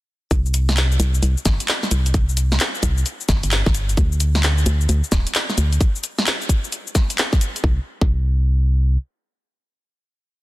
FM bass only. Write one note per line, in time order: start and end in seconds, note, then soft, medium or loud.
0.31 0.98 C2 loud
1.00 1.21 C2 loud
1.23 1.36 C2 loud
1.46 1.58 G1 loud
1.91 2.58 C2 medium
2.83 3.04 C2 loud
3.29 3.42 G1 medium
3.44 3.63 G1 medium
3.66 3.96 G1 medium
3.97 4.65 D2 loud
4.66 4.87 D2 loud
4.89 5.02 D2 loud
5.12 5.25 D1 loud
5.58 5.79 D2 medium
7.64 7.79 C2 loud
8.02 8.97 C2 loud